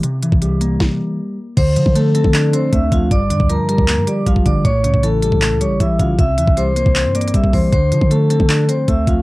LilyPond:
<<
  \new Staff \with { instrumentName = "Vibraphone" } { \time 4/4 \key d \minor \tempo 4 = 156 r1 | <c'' c'''>8 c''8 <a' a''>8 <a' a''>4 <c'' c'''>8 <e'' e'''>8 <f' f''>8 | <d'' d'''>8 <d'' d'''>8 <bes' bes''>8 <bes' bes''>4 <d'' d'''>8 <f' f''>8 <d'' d'''>8 | <cis'' cis'''>8 <cis'' cis'''>8 <a' a''>8 <a' a''>4 <cis'' cis'''>8 <e'' e'''>8 <f' f''>8 |
<e'' e'''>8 <e'' e'''>8 <c'' c'''>8 <c'' c'''>4 <d'' d'''>8 <e'' e'''>8 <c'' c'''>8 | <c'' c'''>8 <c'' c'''>8 <a' a''>8 <a' a''>4 <c'' c'''>8 <e'' e'''>8 <f' f''>8 | }
  \new Staff \with { instrumentName = "Clean electric guitar" } { \clef bass \time 4/4 \key d \minor c8 e8 g8 bes2~ bes8 | d8 f8 a8 c'8 d'8 c'8 a8 f8 | g,8 d8 f8 g8 bes8 g8 f8 d8 | a,8 cis8 e8 g8 a8 g8 e8 cis8 |
c8 e8 g8 bes8 c'8 bes8 g8 e8 | d8 f8 a8 c'8 d'8 c'8 a8 f8 | }
  \new Staff \with { instrumentName = "808-style bass" } { \clef bass \time 4/4 \key d \minor r8. c,4~ c,16 r2 | d,8 d16 d4 d4~ d16 d,8 d,8 | g,,8 g,16 d,8 r8 d,8 g,16 r8 g,,4 | a,,8 cis,16 a,,4 a,,8 cis,16. a,,16. a,,8 a,,8 |
c,8 e,16 c,4 c,8 g,8. bes,,8 e,16 bes,,16 | d,8 d16 d4 d4~ d16 d,8 d,8 | }
  \new DrumStaff \with { instrumentName = "Drums" } \drummode { \time 4/4 hh8 hh16 bd16 hh8 hh8 <bd sn>4 r4 | <cymc hh bd>8 hh16 bd16 hh8 hh16 bd16 <hc hh>8 hh8 <hh bd>8 <hh bd>8 | <hh bd>8 hh16 bd16 hh8 hh16 bd16 <hc hh>8 hh8 <hh bd>16 bd16 <hh bd>8 | <hh bd>8 hh16 bd16 hh8 hh16 bd16 <hc hh>8 hh8 <hh bd>8 <hh bd>8 |
<hh bd>8 hh16 bd16 hh8 hh16 bd16 \tuplet 3/2 { <hc hh>16 r16 r16 hh16 hh16 hh16 } <hh bd>16 bd16 <hho bd>8 | <hh bd>8 hh16 bd16 hh8 hh16 bd16 <hc hh>8 hh8 <hh bd>8 <hh bd>8 | }
>>